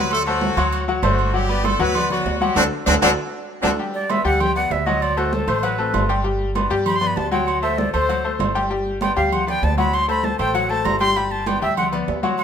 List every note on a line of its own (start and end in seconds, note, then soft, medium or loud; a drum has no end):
0.00 0.51 D2 loud
0.00 0.21 F#3 medium
0.00 0.10 B3 medium
0.00 0.21 F#4 loud
0.00 0.21 F#5 medium
0.11 0.19 A3 medium
0.11 0.18 A4 loud
0.11 high conga soft
0.11 low agogo loud
0.26 0.84 F#3 medium
0.26 0.52 A3 medium
0.26 0.84 F#4 loud
0.26 0.52 A4 medium
0.26 0.52 C5 medium
0.26 high conga soft
0.26 low agogo medium
0.41 high conga loud
0.41 low timbale medium
0.57 1.00 D2 medium
0.57 0.82 F#3 loud
0.57 0.82 F#4 loud
0.57 0.83 F#5 loud
0.57 high conga soft
0.57 low agogo loud
0.73 high conga soft
0.73 low agogo medium
0.88 1.00 F#3 medium
0.88 1.01 F#4 medium
0.88 1.01 F#5 medium
0.88 high conga soft
1.03 1.74 G1 loud
1.03 1.32 F#3 medium
1.03 1.28 A3 medium
1.03 1.32 F#4 medium
1.03 1.28 A4 medium
1.03 1.29 C5 medium
1.03 high conga medium
1.03 low timbale medium
1.03 low agogo loud
1.19 low agogo medium
1.33 1.46 F#3 medium
1.33 1.65 G3 medium
1.33 1.46 F#4 medium
1.33 1.65 G4 loud
1.33 1.47 F#5 medium
1.33 high conga soft
1.49 1.74 B3 medium
1.49 1.74 B4 medium
1.49 1.75 D5 medium
1.49 high conga soft
1.64 1.80 A3 medium
1.64 1.80 A4 loud
1.64 high conga loud
1.64 low timbale medium
1.64 low agogo loud
1.79 2.22 D2 loud
1.79 1.92 F#3 loud
1.79 2.11 B3 loud
1.79 1.92 F#4 loud
1.79 2.11 B4 loud
1.79 1.93 F#5 medium
1.79 high conga soft
1.95 2.08 B3 medium
1.95 2.08 B4 medium
1.95 2.08 D5 medium
1.95 high conga soft
1.95 low conga medium
1.95 low agogo loud
2.10 2.39 F#3 medium
2.10 2.36 B3 medium
2.10 2.39 F#4 medium
2.10 2.36 B4 medium
2.10 2.36 D5 medium
2.10 high conga soft
2.10 low conga medium
2.10 low agogo medium
2.26 2.54 D2 loud
2.26 high conga soft
2.26 low timbale medium
2.41 2.54 F#3 medium
2.41 2.57 G3 medium
2.41 2.54 F#4 loud
2.41 2.57 G4 medium
2.41 2.54 F#5 loud
2.41 high conga medium
2.41 low agogo medium
2.56 2.68 D2 loud
2.56 2.63 F#3 loud
2.56 2.64 C4 loud
2.56 2.66 D4 medium
2.56 2.64 D4 loud
2.56 2.63 F#4 loud
2.56 2.66 F#4 medium
2.56 2.66 A4 medium
2.56 high conga loud
2.56 high timbale loud
2.86 2.98 D2 loud
2.86 2.94 F#3 medium
2.86 2.94 C4 loud
2.86 2.94 D4 loud
2.86 2.97 D4 medium
2.86 2.94 F#4 loud
2.86 2.97 F#4 medium
2.86 2.97 A4 medium
2.86 high conga loud
2.86 high timbale loud
3.02 3.14 D2 loud
3.02 3.09 F#3 loud
3.02 3.09 C4 loud
3.02 3.09 D4 loud
3.02 3.12 D4 loud
3.02 3.09 F#4 loud
3.02 3.12 F#4 loud
3.02 3.12 A4 medium
3.02 high conga medium
3.02 high timbale loud
3.62 3.75 D2 medium
3.62 3.70 F#3 medium
3.62 3.70 C4 loud
3.62 3.70 D4 loud
3.62 3.73 D4 loud
3.62 3.70 F#4 medium
3.62 3.73 F#4 medium
3.62 3.73 A4 medium
3.62 high conga loud
3.62 high timbale loud
3.79 4.04 G3 medium
3.79 4.04 G4 medium
3.79 4.04 G5 medium
3.79 high conga soft
3.94 4.12 D5 medium
3.94 high conga soft
4.09 4.22 B3 medium
4.09 4.22 B4 medium
4.09 4.22 D5 medium
4.09 4.25 E5 medium
4.09 high conga loud
4.09 low timbale medium
4.09 low agogo loud
4.24 4.68 D2 medium
4.24 4.50 G3 loud
4.24 4.50 G4 loud
4.24 4.42 F#5 medium
4.24 4.50 G5 medium
4.24 high conga soft
4.40 4.55 G5 loud
4.40 high conga soft
4.40 low conga loud
4.40 low agogo loud
4.56 4.81 B3 medium
4.56 4.81 B4 medium
4.56 4.81 D5 medium
4.56 4.73 F#5 loud
4.56 high conga soft
4.56 low agogo medium
4.71 5.42 D2 loud
4.71 4.88 E5 medium
4.71 high conga soft
4.71 low timbale medium
4.86 5.12 F#3 loud
4.86 5.12 F#4 medium
4.86 5.04 D#5 loud
4.86 5.12 F#5 medium
4.86 high conga medium
4.86 low agogo medium
5.02 5.19 D5 loud
5.02 high conga soft
5.02 low agogo loud
5.17 5.42 A3 medium
5.17 5.35 F#4 medium
5.17 5.42 A4 medium
5.17 5.43 C5 medium
5.17 high conga soft
5.17 low agogo medium
5.33 5.50 A4 medium
5.33 high conga medium
5.33 low timbale medium
5.47 5.91 A1 loud
5.47 5.60 A3 medium
5.47 5.60 A4 medium
5.47 5.61 C5 medium
5.47 5.66 C5 loud
5.47 high conga soft
5.47 low agogo loud
5.63 5.76 F#3 medium
5.63 5.76 F#4 medium
5.63 6.10 B4 medium
5.63 5.76 F#5 medium
5.63 high conga soft
5.63 low agogo medium
5.78 6.04 A3 medium
5.78 6.04 C4 medium
5.78 6.04 A4 medium
5.78 high conga soft
5.94 6.65 G1 loud
5.94 high conga medium
5.94 low timbale medium
5.94 low agogo loud
6.09 6.22 G3 loud
6.09 6.22 G4 medium
6.09 6.22 G5 medium
6.09 high conga soft
6.09 low agogo medium
6.24 6.49 G3 medium
6.24 6.50 G4 medium
6.24 6.50 G5 medium
6.24 high conga soft
6.40 high conga soft
6.55 6.68 B3 medium
6.55 6.68 B4 medium
6.55 6.68 D5 medium
6.55 high conga loud
6.55 low timbale medium
6.55 low agogo loud
6.70 7.14 G2 loud
6.70 6.96 G3 loud
6.70 6.96 G4 loud
6.70 6.96 G5 medium
6.70 high conga soft
6.86 6.97 B5 medium
6.86 high conga soft
6.86 low conga medium
6.86 low agogo loud
6.96 7.08 C6 loud
7.01 7.26 B3 medium
7.01 7.27 B4 medium
7.01 7.27 D5 medium
7.01 high conga soft
7.01 low conga medium
7.01 low agogo medium
7.07 7.18 B5 medium
7.16 7.88 D2 medium
7.16 7.32 A5 loud
7.16 high conga soft
7.16 low timbale medium
7.32 7.57 F#3 loud
7.32 7.57 F#4 medium
7.32 7.58 F#5 medium
7.32 7.48 G5 medium
7.32 high conga medium
7.32 low agogo medium
7.47 7.62 F#5 medium
7.47 high conga soft
7.47 low agogo loud
7.62 7.88 A3 medium
7.62 7.88 A4 medium
7.62 7.88 C5 medium
7.62 7.80 E5 medium
7.62 high conga soft
7.62 low agogo medium
7.78 7.93 D5 medium
7.78 high conga loud
7.78 low timbale medium
7.93 8.37 D2 loud
7.93 8.06 A3 medium
7.93 8.06 A4 medium
7.93 8.36 C5 loud
7.93 8.06 C5 medium
7.93 low agogo loud
8.09 8.22 F#3 medium
8.09 8.22 F#4 medium
8.09 8.22 F#5 medium
8.09 high conga soft
8.09 low agogo medium
8.24 8.50 A3 medium
8.24 8.50 A4 medium
8.24 8.50 C5 medium
8.24 high conga soft
8.39 9.11 G1 loud
8.39 high conga medium
8.39 low timbale medium
8.39 low agogo loud
8.55 8.68 G3 medium
8.55 8.68 G4 medium
8.55 8.68 G5 medium
8.55 high conga soft
8.55 low agogo medium
8.70 8.96 G3 medium
8.70 8.96 G4 medium
8.70 8.96 G5 medium
8.70 high conga soft
8.86 high conga soft
9.01 9.14 B3 medium
9.01 9.14 B4 medium
9.01 9.14 D5 medium
9.01 9.16 G5 loud
9.01 high conga loud
9.01 low timbale medium
9.01 low agogo loud
9.16 9.59 D2 medium
9.16 9.42 G3 medium
9.16 9.42 G4 loud
9.16 9.35 F5 medium
9.16 9.42 G5 medium
9.16 high conga soft
9.32 9.48 F#5 medium
9.32 high conga soft
9.32 low conga medium
9.32 low agogo loud
9.47 9.72 B3 medium
9.47 9.72 B4 medium
9.47 9.72 D5 medium
9.47 9.66 G5 loud
9.47 high conga soft
9.47 low conga medium
9.47 low agogo medium
9.63 10.34 D2 loud
9.63 9.78 A5 loud
9.63 high conga soft
9.63 low timbale medium
9.78 10.03 F#3 medium
9.78 10.03 F#4 medium
9.78 10.03 F#5 medium
9.78 9.96 B5 medium
9.78 high conga medium
9.78 low agogo medium
9.93 10.09 C6 loud
9.93 high conga soft
9.93 low agogo loud
10.08 10.33 A3 medium
10.08 10.34 A4 medium
10.08 10.34 C5 medium
10.08 10.26 B5 medium
10.08 high conga soft
10.08 low agogo medium
10.23 10.39 A5 loud
10.23 high conga medium
10.23 low timbale medium
10.39 10.82 A1 loud
10.39 10.52 A3 medium
10.39 10.52 A4 medium
10.39 10.52 C5 medium
10.39 10.56 G5 loud
10.39 high conga soft
10.39 low agogo loud
10.54 10.67 F#3 medium
10.54 10.67 F#4 medium
10.54 10.71 F#5 loud
10.54 10.67 F#5 medium
10.54 high conga soft
10.54 low agogo medium
10.70 10.95 A3 medium
10.70 10.95 A4 medium
10.70 10.96 C5 medium
10.70 10.86 A5 loud
10.70 high conga soft
10.85 11.56 G1 loud
10.85 10.99 A#5 loud
10.85 high conga medium
10.85 low timbale medium
10.85 low agogo loud
10.99 11.13 G3 loud
10.99 11.13 G4 medium
10.99 11.13 G5 medium
10.99 11.18 C6 loud
10.99 high conga soft
10.99 low agogo medium
11.16 11.41 G3 medium
11.16 11.41 G4 medium
11.16 11.42 G5 medium
11.16 11.33 B5 loud
11.16 high conga soft
11.31 11.49 A5 medium
11.31 high conga soft
11.46 11.59 B3 medium
11.46 11.59 B4 medium
11.46 11.60 D5 medium
11.46 11.61 G5 loud
11.46 high conga medium
11.46 low timbale medium
11.46 low agogo loud
11.62 12.05 D2 medium
11.62 11.87 G3 medium
11.62 11.87 G4 medium
11.62 11.76 E5 loud
11.62 11.87 G5 medium
11.62 high conga soft
11.77 11.87 F#5 medium
11.77 high conga soft
11.77 low conga medium
11.77 low agogo loud
11.92 12.17 B3 medium
11.92 12.18 B4 medium
11.92 12.18 D5 medium
11.92 high conga soft
11.92 low conga medium
11.92 low agogo medium
12.08 12.44 D2 medium
12.08 high conga soft
12.08 low timbale medium
12.23 12.44 F#3 loud
12.23 12.44 F#4 loud
12.23 12.44 F#5 medium
12.23 high conga medium
12.23 low agogo medium
12.38 12.44 F#5 medium
12.38 high conga soft
12.38 low agogo loud